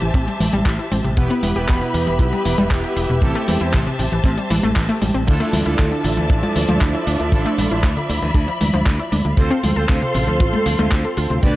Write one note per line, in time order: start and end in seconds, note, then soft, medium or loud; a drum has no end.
0.00 0.13 A1 medium
0.00 0.14 E3 medium
0.00 1.15 G4 medium
0.00 1.15 C5 medium
0.00 1.15 E5 medium
0.00 1.15 A5 medium
0.00 closed hi-hat soft
0.14 0.26 A1 loud
0.14 0.20 C4 medium
0.14 kick loud
0.14 closed hi-hat medium
0.28 0.36 G3 medium
0.28 closed hi-hat soft
0.40 0.52 A1 medium
0.40 0.53 E3 medium
0.40 open hi-hat loud
0.40 high conga medium
0.53 0.65 A1 medium
0.53 0.62 G3 loud
0.53 closed hi-hat soft
0.53 high conga medium
0.66 0.77 A1 loud
0.66 0.71 E4 medium
0.66 kick loud
0.66 clap loud
0.66 closed hi-hat medium
0.79 0.91 E4 medium
0.79 closed hi-hat soft
0.92 1.03 A1 medium
0.92 1.00 C4 medium
0.92 open hi-hat loud
0.92 high conga medium
1.04 1.16 A1 medium
1.04 1.13 C3 medium
1.04 closed hi-hat soft
1.17 1.29 E1 loud
1.17 1.22 B2 medium
1.17 1.53 B3 medium
1.17 1.53 E4 medium
1.17 5.23 G4 medium
1.17 1.53 G4 medium
1.17 3.20 B4 medium
1.17 1.53 B4 loud
1.17 5.23 E5 medium
1.17 3.20 B5 medium
1.17 kick loud
1.17 closed hi-hat medium
1.30 1.39 B3 loud
1.30 closed hi-hat soft
1.43 1.54 E1 medium
1.43 1.55 E3 medium
1.43 open hi-hat loud
1.43 high conga medium
1.56 1.67 E1 medium
1.56 3.19 B3 medium
1.56 3.19 E4 medium
1.56 3.19 G4 medium
1.56 1.64 G4 medium
1.56 3.19 B4 loud
1.56 closed hi-hat soft
1.68 1.80 E1 loud
1.68 1.77 B2 medium
1.68 kick loud
1.68 clap loud
1.68 closed hi-hat medium
1.81 1.93 B2 medium
1.81 closed hi-hat soft
1.94 2.06 E2 medium
1.94 2.06 B2 medium
1.94 open hi-hat loud
2.07 2.18 E1 medium
2.07 2.19 E3 medium
2.07 closed hi-hat soft
2.19 2.31 B1 loud
2.19 2.25 E4 medium
2.19 kick loud
2.19 closed hi-hat medium
2.33 2.41 G3 medium
2.33 closed hi-hat soft
2.45 2.57 E1 loud
2.45 2.58 E3 medium
2.45 open hi-hat loud
2.58 2.70 E1 medium
2.58 2.67 G3 loud
2.58 closed hi-hat soft
2.58 high conga medium
2.71 2.82 E1 loud
2.71 2.76 G4 medium
2.71 kick loud
2.71 clap loud
2.71 closed hi-hat medium
2.84 2.96 G4 medium
2.84 closed hi-hat soft
2.96 3.08 E1 medium
2.96 3.05 E4 medium
2.96 open hi-hat loud
3.09 3.21 E1 medium
3.09 3.18 B2 medium
3.09 closed hi-hat soft
3.22 3.34 A1 loud
3.22 3.28 C3 medium
3.22 3.58 C4 loud
3.22 3.58 E4 medium
3.22 3.58 G4 medium
3.22 3.58 A4 loud
3.22 5.25 C5 medium
3.22 5.25 A5 medium
3.22 kick loud
3.22 closed hi-hat medium
3.35 3.44 A3 loud
3.35 closed hi-hat soft
3.48 3.59 E2 loud
3.48 3.60 E3 medium
3.48 open hi-hat loud
3.48 high conga medium
3.61 3.72 E2 medium
3.61 3.78 C4 medium
3.61 3.78 E4 medium
3.61 3.69 E4 medium
3.61 3.78 G4 medium
3.61 3.78 C5 medium
3.61 closed hi-hat soft
3.73 3.85 A1 loud
3.73 3.82 C3 medium
3.73 kick loud
3.73 clap loud
3.73 closed hi-hat medium
3.86 3.98 C3 medium
3.86 closed hi-hat soft
3.99 4.11 A1 medium
3.99 4.12 C3 medium
3.99 open hi-hat loud
4.12 4.23 A1 medium
4.12 4.24 E3 medium
4.12 closed hi-hat soft
4.24 4.36 A1 loud
4.24 4.30 C4 medium
4.24 kick loud
4.24 closed hi-hat medium
4.38 4.46 G3 medium
4.38 closed hi-hat soft
4.50 4.62 A1 loud
4.50 4.56 E3 loud
4.50 open hi-hat loud
4.50 high conga medium
4.63 4.75 A1 medium
4.63 4.69 A3 loud
4.63 closed hi-hat soft
4.63 high conga medium
4.76 4.88 A1 loud
4.76 4.85 E3 medium
4.76 kick loud
4.76 clap loud
4.76 closed hi-hat medium
4.89 4.94 A3 loud
4.89 closed hi-hat soft
5.02 5.13 A1 medium
5.02 5.14 G3 medium
5.02 open hi-hat loud
5.02 high conga medium
5.14 5.26 A1 medium
5.14 5.23 C4 medium
5.14 closed hi-hat soft
5.27 5.39 D2 loud
5.27 5.32 D3 medium
5.27 9.34 F3 medium
5.27 5.63 D4 medium
5.27 5.63 E4 medium
5.27 5.63 F4 medium
5.27 5.63 A4 loud
5.27 9.34 D5 medium
5.27 9.34 E5 medium
5.27 7.31 A5 medium
5.27 kick loud
5.27 closed hi-hat medium
5.27 crash loud
5.27 cabasa soft
5.40 5.49 A3 loud
5.40 closed hi-hat soft
5.53 5.65 D2 loud
5.53 5.65 E3 medium
5.53 open hi-hat loud
5.53 high conga medium
5.53 cabasa medium
5.66 5.77 D2 medium
5.66 7.30 D4 medium
5.66 5.74 E4 medium
5.66 7.30 E4 medium
5.66 7.30 F4 medium
5.66 7.30 A4 loud
5.66 closed hi-hat soft
5.66 cabasa soft
5.79 5.90 D2 loud
5.79 5.87 D3 medium
5.79 kick loud
5.79 clap loud
5.79 closed hi-hat medium
5.79 cabasa soft
5.91 6.03 D3 medium
5.91 closed hi-hat soft
6.04 6.16 A1 medium
6.04 6.17 D3 medium
6.04 open hi-hat loud
6.04 cabasa medium
6.17 6.29 D2 medium
6.17 6.29 E3 medium
6.17 closed hi-hat soft
6.17 cabasa soft
6.30 6.41 A1 loud
6.30 6.35 D4 medium
6.30 kick loud
6.30 closed hi-hat medium
6.30 cabasa soft
6.43 6.52 F3 medium
6.43 closed hi-hat soft
6.43 high conga medium
6.56 6.67 D2 loud
6.56 6.68 E3 medium
6.56 open hi-hat loud
6.56 cabasa medium
6.68 6.80 D2 medium
6.68 6.77 F3 loud
6.68 closed hi-hat soft
6.68 high conga medium
6.68 cabasa soft
6.81 6.93 D2 loud
6.81 6.87 E4 medium
6.81 kick loud
6.81 clap loud
6.81 closed hi-hat medium
6.81 cabasa soft
6.94 7.06 E4 medium
6.94 closed hi-hat soft
7.07 7.18 D2 loud
7.07 7.16 D4 medium
7.07 open hi-hat loud
7.07 cabasa medium
7.20 7.31 D2 medium
7.20 7.29 D3 medium
7.20 closed hi-hat soft
7.20 cabasa soft
7.32 7.44 A1 loud
7.32 7.38 D3 medium
7.32 7.68 D4 medium
7.32 7.68 E4 medium
7.32 7.68 F4 medium
7.32 7.68 A4 loud
7.32 9.36 B5 medium
7.32 kick loud
7.32 closed hi-hat medium
7.32 cabasa soft
7.45 7.54 A3 loud
7.45 closed hi-hat soft
7.58 7.70 A1 medium
7.58 7.71 E3 medium
7.58 open hi-hat loud
7.58 high conga medium
7.58 cabasa medium
7.71 7.83 A1 medium
7.71 7.88 D4 medium
7.71 7.88 E4 medium
7.71 7.80 E4 medium
7.71 7.88 F4 medium
7.71 7.88 C5 medium
7.71 closed hi-hat soft
7.71 cabasa soft
7.83 7.95 D2 loud
7.83 7.93 D3 medium
7.83 kick loud
7.83 clap loud
7.83 closed hi-hat medium
7.97 8.08 D3 medium
7.97 closed hi-hat soft
8.09 8.21 D2 medium
8.09 8.22 D3 medium
8.09 open hi-hat loud
8.09 cabasa medium
8.22 8.34 D2 medium
8.22 8.35 E3 medium
8.22 closed hi-hat soft
8.22 cabasa soft
8.34 8.46 D2 loud
8.34 8.40 D4 medium
8.34 kick loud
8.34 closed hi-hat medium
8.34 cabasa soft
8.48 8.57 F3 medium
8.48 closed hi-hat soft
8.61 8.72 D2 loud
8.61 8.73 E3 medium
8.61 open hi-hat loud
8.61 high conga medium
8.61 cabasa medium
8.74 8.85 D2 medium
8.74 8.82 F3 loud
8.74 closed hi-hat soft
8.74 high conga medium
8.74 cabasa soft
8.86 8.98 D2 medium
8.86 8.92 E4 medium
8.86 kick loud
8.86 clap loud
8.86 closed hi-hat medium
8.86 cabasa soft
8.99 9.11 E4 medium
8.99 closed hi-hat soft
9.12 9.24 D2 medium
9.12 9.21 D4 medium
9.12 open hi-hat loud
9.12 high conga medium
9.12 cabasa medium
9.25 9.36 D2 medium
9.25 9.33 D3 medium
9.25 closed hi-hat soft
9.25 cabasa soft
9.37 9.49 D2 loud
9.37 9.43 C3 medium
9.37 9.73 C4 medium
9.37 9.73 F4 medium
9.37 11.41 A4 medium
9.37 9.73 A4 medium
9.37 9.73 C5 loud
9.37 11.41 C5 medium
9.37 11.41 F5 medium
9.37 11.41 C6 loud
9.37 kick loud
9.37 closed hi-hat medium
9.37 cabasa soft
9.51 9.59 C4 loud
9.51 closed hi-hat soft
9.63 9.75 D2 loud
9.63 9.76 F3 medium
9.63 open hi-hat loud
9.63 high conga medium
9.63 cabasa medium
9.76 9.88 D2 medium
9.76 11.40 C4 medium
9.76 11.40 F4 medium
9.76 9.85 A4 medium
9.76 11.40 A4 medium
9.76 11.40 C5 loud
9.76 closed hi-hat soft
9.76 cabasa soft
9.89 10.01 D2 loud
9.89 9.98 C3 medium
9.89 kick loud
9.89 clap loud
9.89 closed hi-hat medium
9.89 cabasa soft
10.02 10.13 C3 medium
10.02 closed hi-hat soft
10.15 10.26 A1 medium
10.15 10.27 C3 medium
10.15 open hi-hat loud
10.15 cabasa medium
10.27 10.39 D2 medium
10.27 10.40 F3 medium
10.27 closed hi-hat soft
10.27 cabasa soft
10.40 10.52 A1 loud
10.40 10.46 F4 medium
10.40 kick loud
10.40 closed hi-hat medium
10.40 cabasa soft
10.53 10.62 A3 medium
10.53 closed hi-hat soft
10.53 high conga medium
10.66 10.77 D2 loud
10.66 10.78 F3 medium
10.66 open hi-hat loud
10.66 cabasa medium
10.79 10.90 D2 medium
10.79 10.87 A3 loud
10.79 closed hi-hat soft
10.79 high conga medium
10.79 cabasa soft
10.92 11.03 D2 loud
10.92 10.97 A4 medium
10.92 kick loud
10.92 clap loud
10.92 closed hi-hat medium
11.04 11.17 A4 medium
11.04 closed hi-hat soft
11.17 11.29 D2 medium
11.17 11.26 F4 medium
11.17 open hi-hat loud
11.17 cabasa medium
11.30 11.42 D2 medium
11.30 11.39 C3 medium
11.30 closed hi-hat soft
11.30 cabasa soft
11.43 11.54 D2 loud
11.43 11.48 B2 medium
11.43 11.56 D4 loud
11.43 11.56 G4 medium
11.43 11.56 B4 medium
11.43 11.56 D5 medium
11.43 11.56 D5 loud
11.43 11.56 G5 medium
11.43 11.56 D6 medium
11.43 kick loud
11.43 closed hi-hat medium
11.43 cabasa soft